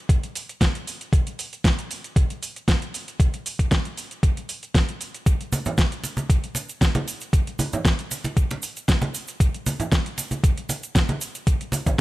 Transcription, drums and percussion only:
0.09 kick, closed hi-hat, shaker
0.23 closed hi-hat, shaker
0.35 open hi-hat, shaker
0.49 closed hi-hat, shaker
0.61 kick, snare, closed hi-hat, shaker
0.75 closed hi-hat, shaker
0.87 open hi-hat, shaker
1.01 closed hi-hat, shaker
1.13 kick, closed hi-hat, shaker
1.27 closed hi-hat, shaker
1.39 open hi-hat, shaker
1.53 closed hi-hat, shaker
1.64 kick, snare, closed hi-hat, shaker
1.79 closed hi-hat, shaker
1.91 open hi-hat, shaker
2.04 closed hi-hat, shaker
2.16 kick, closed hi-hat, shaker
2.30 closed hi-hat, shaker
2.43 open hi-hat, shaker
2.56 closed hi-hat, shaker
2.68 kick, snare, closed hi-hat, shaker
2.82 closed hi-hat, shaker
2.94 open hi-hat, shaker
3.08 closed hi-hat, shaker
3.20 kick, closed hi-hat, shaker
3.34 closed hi-hat, shaker
3.46 open hi-hat, shaker
3.59 kick, closed hi-hat, shaker
3.71 kick, snare, closed hi-hat, shaker
3.85 closed hi-hat, shaker
3.97 open hi-hat, shaker
4.11 closed hi-hat, shaker
4.23 kick, closed hi-hat, shaker
4.37 closed hi-hat, shaker
4.49 open hi-hat, shaker
4.63 closed hi-hat, shaker
4.75 kick, snare, closed hi-hat, shaker
4.89 closed hi-hat, shaker
5.01 open hi-hat, shaker
5.14 closed hi-hat, shaker
5.26 kick, closed hi-hat, cabasa, shaker
5.41 closed hi-hat, shaker
5.52 open hi-hat, high conga, cabasa, shaker
5.65 closed hi-hat, low conga, cabasa, shaker
5.77 kick, snare, closed hi-hat, cabasa, shaker
5.92 closed hi-hat, shaker
6.04 open hi-hat, muted conga, cabasa, shaker
6.17 closed hi-hat, high conga, cabasa, shaker
6.30 kick, closed hi-hat, cabasa, shaker
6.44 closed hi-hat, shaker
6.55 open hi-hat, muted conga, cabasa, shaker
6.69 closed hi-hat, cabasa, shaker
6.81 kick, snare, closed hi-hat, cabasa, shaker
6.95 closed hi-hat, high conga, shaker
7.08 open hi-hat, cabasa, shaker
7.21 closed hi-hat, cabasa, shaker
7.33 kick, closed hi-hat, cabasa, shaker
7.47 closed hi-hat, shaker
7.59 open hi-hat, high conga, cabasa, shaker
7.73 closed hi-hat, low conga, cabasa, shaker
7.85 kick, snare, closed hi-hat, cabasa, shaker
7.99 closed hi-hat, shaker
8.11 open hi-hat, muted conga, cabasa, shaker
8.24 closed hi-hat, muted conga, high conga, cabasa, shaker
8.37 kick, closed hi-hat, cabasa, shaker
8.51 closed hi-hat, muted conga, shaker
8.62 open hi-hat, cabasa, shaker
8.76 closed hi-hat, cabasa, shaker
8.88 kick, snare, closed hi-hat, cabasa, shaker
9.02 closed hi-hat, high conga, shaker
9.14 open hi-hat, cabasa, shaker
9.27 closed hi-hat, cabasa, shaker
9.40 kick, closed hi-hat, cabasa, shaker
9.54 closed hi-hat, shaker
9.66 open hi-hat, high conga, cabasa, shaker
9.80 closed hi-hat, low conga, cabasa, shaker
9.92 kick, snare, closed hi-hat, cabasa, shaker
10.06 closed hi-hat, shaker
10.18 open hi-hat, muted conga, cabasa, shaker
10.31 closed hi-hat, high conga, cabasa, shaker
10.44 kick, closed hi-hat, cabasa, shaker
10.58 closed hi-hat, shaker
10.69 open hi-hat, muted conga, cabasa, shaker
10.83 closed hi-hat, cabasa, shaker
10.95 kick, snare, closed hi-hat, cabasa, shaker
11.09 closed hi-hat, high conga, shaker
11.21 open hi-hat, cabasa, shaker
11.35 closed hi-hat, cabasa, shaker
11.47 kick, closed hi-hat, cabasa, shaker
11.61 closed hi-hat, shaker
11.72 open hi-hat, high conga, cabasa, shaker
11.86 kick, closed hi-hat, low conga, cabasa, shaker

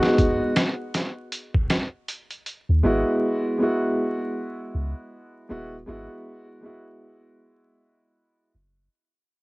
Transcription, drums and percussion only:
0.03 snare
0.18 kick, closed hi-hat
0.56 snare, closed hi-hat
0.94 snare, closed hi-hat
1.32 closed hi-hat
1.54 kick
1.70 snare, closed hi-hat
2.08 closed hi-hat
2.31 closed hi-hat
2.46 closed hi-hat

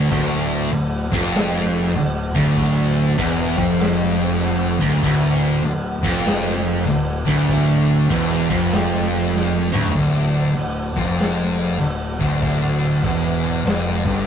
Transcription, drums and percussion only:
0.11 kick, crash
0.73 crash
1.13 kick
1.35 snare, crash
1.87 snare
1.96 crash
2.36 kick
2.57 kick, crash
3.18 kick, crash
3.58 kick
3.80 snare, crash
4.32 snare
4.42 crash
4.81 kick
5.03 kick, crash
5.64 crash
6.04 kick
6.25 snare, crash
6.78 snare
6.88 crash
7.27 kick
7.49 kick, crash
8.10 kick, crash
8.50 kick
8.72 snare, crash
9.35 snare
9.73 mid tom
9.85 floor tom
9.96 kick, crash
10.36 crash
10.57 crash
10.97 kick, crash
11.19 snare, crash
11.59 crash
11.80 crash
12.20 kick, crash
12.42 kick, crash
12.83 crash
13.04 kick, crash
13.44 crash
13.66 snare, crash
13.87 snare
14.05 kick, crash

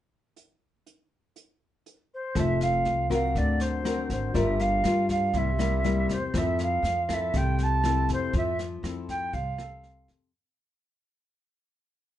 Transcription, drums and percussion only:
0.36 closed hi-hat
0.86 closed hi-hat
1.36 closed hi-hat
1.86 closed hi-hat
2.35 kick, cross-stick, snare
2.61 snare
2.85 snare
3.10 kick, cross-stick, snare
3.35 kick, snare
3.60 snare
3.85 cross-stick, snare
4.09 kick, snare
4.34 kick, snare
4.59 snare
4.84 cross-stick, snare
5.09 kick, snare
5.33 kick, snare
5.59 cross-stick, snare
5.84 snare
6.09 kick, snare
6.34 kick, cross-stick, snare
6.59 snare
6.84 snare
7.09 kick, cross-stick, snare
7.34 kick, snare
7.59 snare
7.84 cross-stick, snare
8.09 kick, snare
8.33 kick, snare
8.59 snare
8.84 cross-stick, snare
9.09 kick, snare
9.33 kick, snare
9.58 cross-stick, snare
9.83 snare
10.08 kick, snare

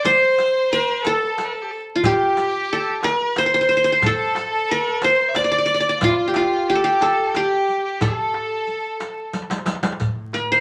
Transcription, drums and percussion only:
0.05 riq
0.38 riq
0.71 riq
1.05 riq
1.38 riq
2.03 riq, darbuka dum
2.37 riq, darbuka tek
3.03 riq, darbuka tek
3.36 riq, darbuka tek
3.70 riq
4.02 riq, darbuka dum
4.35 riq, darbuka tek
5.02 riq, darbuka tek
5.35 riq, darbuka tek
5.68 riq
6.01 riq, darbuka dum
6.34 riq, darbuka tek
7.01 riq, darbuka tek
7.34 riq, darbuka tek
7.68 riq
8.01 riq, darbuka dum
8.34 darbuka tek
8.67 riq, darbuka ka
9.00 riq, darbuka tek
9.33 riq, darbuka tek
9.42 darbuka ka
9.50 riq, darbuka tek
9.58 darbuka ka
9.66 riq, darbuka tek
9.75 darbuka ka
9.83 riq, darbuka tek
9.92 darbuka ka
10.00 riq, darbuka dum
10.33 riq, darbuka tek

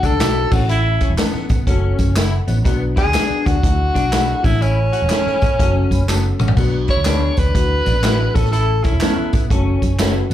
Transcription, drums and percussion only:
0.03 kick, closed hi-hat, tambourine
0.20 snare, clap, closed hi-hat, tambourine
0.51 kick, tambourine, crash
0.69 closed hi-hat, tambourine
1.01 kick, closed hi-hat, tambourine
1.17 snare, clap, closed hi-hat, tambourine
1.34 snare
1.49 kick, closed hi-hat, tambourine
1.67 kick, closed hi-hat
1.99 kick, closed hi-hat, tambourine
2.16 snare, clap, closed hi-hat, tambourine
2.48 closed hi-hat, tambourine
2.65 kick, closed hi-hat, tambourine
2.97 kick, closed hi-hat, tambourine
3.14 snare, clap, closed hi-hat, tambourine
3.46 kick, closed hi-hat, tambourine
3.63 kick, closed hi-hat
3.95 kick, closed hi-hat, tambourine
4.12 snare, clap, closed hi-hat, tambourine
4.44 kick, open hi-hat, tambourine
4.62 closed hi-hat, tambourine
4.93 closed hi-hat, tambourine
5.09 snare, clap, closed hi-hat, tambourine
5.27 snare
5.42 kick, closed hi-hat, tambourine
5.59 kick, closed hi-hat
5.91 kick, closed hi-hat, tambourine
6.08 snare, clap, tambourine
6.39 mid tom, tambourine
6.48 floor tom
6.57 kick, crash, tambourine
6.88 kick, closed hi-hat
7.05 snare, clap, closed hi-hat, tambourine
7.37 kick, closed hi-hat, tambourine
7.55 kick, closed hi-hat, tambourine
7.86 kick, closed hi-hat, tambourine
8.03 snare, clap, closed hi-hat, tambourine
8.35 kick, closed hi-hat, tambourine
8.45 snare
8.53 closed hi-hat, tambourine
8.84 kick, closed hi-hat, tambourine
9.00 snare, clap, closed hi-hat, tambourine
9.33 kick, closed hi-hat, tambourine
9.50 kick, closed hi-hat
9.82 kick, closed hi-hat, tambourine
9.99 snare, clap, closed hi-hat, tambourine
10.31 closed hi-hat

